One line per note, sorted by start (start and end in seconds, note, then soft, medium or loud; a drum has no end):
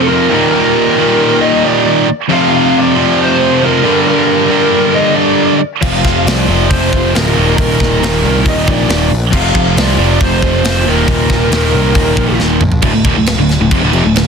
0.00 0.29 F2 medium
0.00 0.30 F2 medium
0.00 0.30 C3 loud
0.00 0.31 C3 medium
0.00 0.30 F3 medium
0.00 0.32 F3 loud
0.00 0.07 A4 medium
0.08 0.31 F2 medium
0.08 0.31 C3 loud
0.08 0.31 F3 loud
0.08 0.50 A#4 medium
0.12 0.32 A3 medium
0.12 0.32 C4 medium
0.12 0.32 F4 loud
0.31 0.96 D#2 loud
0.31 0.97 A#2 loud
0.31 0.97 D#3 loud
0.31 0.98 G3 loud
0.31 0.99 G4 loud
0.51 1.44 A#4 medium
0.97 1.63 D#2 medium
0.97 1.63 A#2 medium
0.97 1.63 D#3 medium
0.97 1.64 G3 loud
0.97 1.63 G4 medium
1.41 1.64 D#5 loud
1.64 2.09 D#2 medium
1.64 2.09 A#2 medium
1.64 2.08 D#3 medium
1.64 2.08 G3 medium
1.64 2.07 G4 medium
1.64 2.06 D5 loud
2.28 2.94 F2 medium
2.28 2.95 C3 medium
2.28 2.95 F3 medium
2.28 2.96 A3 medium
2.28 2.95 C4 medium
2.28 2.77 F5 loud
2.33 2.94 F4 loud
2.79 3.18 D5 loud
2.96 3.61 F2 medium
2.96 3.61 C3 medium
2.96 3.62 F3 medium
2.96 3.62 A3 medium
2.96 3.61 C4 medium
2.96 3.61 F4 medium
3.23 3.64 C5 loud
3.62 3.83 F2 medium
3.62 3.83 C3 medium
3.62 3.84 F3 medium
3.62 3.84 A3 medium
3.62 3.84 C4 loud
3.62 3.85 F4 loud
3.62 4.06 A#4 loud
3.85 4.49 G2 medium
3.85 4.49 D3 loud
3.85 4.50 G3 loud
3.85 4.51 A#3 loud
3.85 4.51 D4 loud
3.85 4.51 G4 loud
4.08 4.98 A#4 medium
4.50 5.15 G2 medium
4.50 5.15 D3 medium
4.50 5.15 G3 medium
4.50 5.15 A#3 medium
4.50 5.15 D4 medium
4.50 5.13 G4 medium
4.95 5.15 D#5 loud
5.15 5.60 G2 medium
5.15 5.60 D3 medium
5.15 5.60 G3 medium
5.15 5.59 A#3 medium
5.15 5.59 D4 medium
5.15 5.58 G4 medium
5.15 5.57 D5 medium
5.82 6.03 F1 loud
5.82 6.47 F2 medium
5.82 6.47 C3 medium
5.82 6.48 F3 medium
5.82 6.48 A3 loud
5.82 6.48 C4 loud
5.82 6.48 F4 medium
5.82 6.23 F5 loud
5.82 kick loud
5.82 crash loud
6.05 6.25 F1 medium
6.05 kick medium
6.05 snare soft
6.26 6.47 C2 medium
6.26 6.71 D5 loud
6.26 snare loud
6.26 open hi-hat medium
6.48 6.69 F1 medium
6.48 7.11 F2 medium
6.48 7.12 C3 medium
6.48 7.13 F3 medium
6.48 7.13 A3 medium
6.48 7.13 C4 medium
6.48 7.13 F4 medium
6.70 6.91 F1 medium
6.70 7.14 C5 loud
6.70 kick loud
6.70 open hi-hat medium
6.93 7.14 F1 medium
6.93 kick medium
7.12 7.36 D1 medium
7.12 7.34 F2 medium
7.12 7.34 C3 medium
7.12 7.35 F3 medium
7.12 7.35 A3 loud
7.12 7.35 C4 medium
7.12 7.35 F4 loud
7.12 7.59 A#4 loud
7.12 open hi-hat medium
7.16 snare loud
7.35 7.57 D#1 loud
7.35 7.99 D#2 medium
7.35 8.00 A#2 medium
7.35 8.01 D#3 loud
7.35 8.01 G3 loud
7.39 8.02 G4 loud
7.58 7.79 D#1 loud
7.58 8.49 A#4 medium
7.58 kick loud
7.58 open hi-hat medium
7.80 8.01 D#1 medium
7.80 kick medium
7.80 snare soft
8.00 8.22 D#1 loud
8.00 8.65 D#2 medium
8.00 8.66 A#2 medium
8.00 8.65 D#3 medium
8.00 8.65 G3 medium
8.00 8.64 G4 medium
8.00 open hi-hat medium
8.04 snare loud
8.23 8.44 C2 loud
8.45 8.66 D#1 medium
8.45 8.69 D#5 medium
8.45 kick loud
8.45 open hi-hat medium
8.65 8.87 A#1 medium
8.65 9.11 D#2 medium
8.65 9.10 A#2 medium
8.65 9.09 D#3 medium
8.65 9.09 G3 medium
8.65 9.09 G4 medium
8.65 9.09 D5 medium
8.65 kick loud
8.88 9.10 D#1 loud
8.88 snare loud
8.88 open hi-hat medium
9.10 9.32 A#1 loud
9.32 9.54 F1 loud
9.32 9.97 F2 medium
9.32 9.97 C3 medium
9.32 9.97 F3 medium
9.32 9.97 A3 loud
9.32 9.97 C4 loud
9.32 9.96 F4 loud
9.32 9.78 F5 loud
9.32 kick loud
9.32 crash loud
9.54 9.76 F1 medium
9.54 kick medium
9.77 9.97 C2 loud
9.77 10.22 D5 loud
9.77 snare loud
9.77 open hi-hat medium
9.97 10.19 F1 loud
9.97 10.62 F2 medium
9.97 10.63 C3 medium
9.97 10.63 F3 medium
9.97 10.63 A3 medium
9.97 10.63 C4 medium
9.97 10.62 F4 medium
10.21 10.42 F1 medium
10.21 10.88 C5 loud
10.21 kick loud
10.21 open hi-hat medium
10.42 10.63 F1 loud
10.42 kick medium
10.63 10.86 F1 medium
10.63 10.84 F2 medium
10.63 10.85 C3 loud
10.63 10.85 F3 loud
10.63 10.85 A3 medium
10.63 10.86 C4 loud
10.63 10.86 F4 medium
10.63 snare loud
10.63 open hi-hat medium
10.85 11.07 D#1 medium
10.85 11.50 D#2 loud
10.85 11.51 A#2 medium
10.85 11.51 D#3 loud
10.85 11.51 G3 loud
10.85 12.37 A#4 medium
10.89 11.52 G4 loud
11.08 11.29 D#1 loud
11.08 kick loud
11.08 open hi-hat medium
11.30 11.51 D#1 medium
11.30 kick medium
11.30 snare soft
11.51 11.73 D#1 loud
11.51 12.16 D#2 medium
11.51 12.17 A#2 medium
11.51 12.16 D#3 medium
11.51 12.15 G3 medium
11.51 12.14 G4 medium
11.51 snare loud
11.51 open hi-hat medium
11.74 11.95 C2 loud
11.95 12.16 D#1 medium
11.95 kick loud
11.95 open hi-hat medium
12.15 12.38 A#1 medium
12.15 12.61 A#2 medium
12.15 12.60 D#3 medium
12.15 12.60 G3 medium
12.15 12.59 G4 medium
12.15 kick loud
12.19 12.61 D#2 medium
12.40 12.61 D#1 medium
12.40 snare medium
12.61 12.82 A#1 loud
12.61 mid tom medium
12.72 floor tom medium
12.82 12.93 D1 loud
12.82 12.92 D2 medium
12.82 12.92 A2 loud
12.82 kick loud
12.82 crash medium
12.93 13.04 D1 medium
12.93 13.04 D2 medium
12.93 13.04 A2 medium
13.04 13.15 D#1 medium
13.04 13.15 D#2 medium
13.04 13.16 A#2 medium
13.04 kick loud
13.04 crash medium
13.16 13.37 D1 medium
13.16 13.34 D2 medium
13.16 13.34 A2 medium
13.26 snare loud
13.26 crash medium
13.37 13.58 D1 medium
13.37 13.57 D2 medium
13.37 13.57 A2 medium
13.49 snare soft
13.49 crash medium
13.59 13.70 D1 medium
13.59 13.72 D2 medium
13.59 13.72 A2 medium
13.71 13.82 F1 medium
13.71 13.81 F2 loud
13.71 13.82 C3 loud
13.71 kick loud
13.71 crash medium
13.81 13.92 D1 loud
13.81 13.92 D2 medium
13.81 13.93 A2 loud
13.92 14.03 F1 loud
13.92 14.04 F2 medium
13.92 14.04 C3 loud
13.92 crash medium
14.04 14.14 D1 medium
14.04 14.14 D2 medium
14.04 14.15 A2 medium
14.15 14.24 D1 medium
14.15 14.25 D2 medium
14.15 14.25 A2 medium
14.15 snare loud
14.15 crash medium